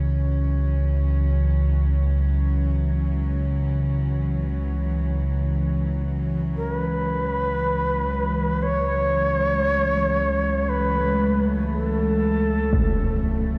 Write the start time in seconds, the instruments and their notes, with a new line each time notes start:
Already playing: synth drone C#2 C#3, cello section E3 F#3 C#4
6.55 cello section C#2, shakuhachi A#4
6.74 shakuhachi B4
8.63 shakuhachi C#5
9.50 cello section A3
10.69 shakuhachi B4
11.72 shakuhachi A4
12.73 impact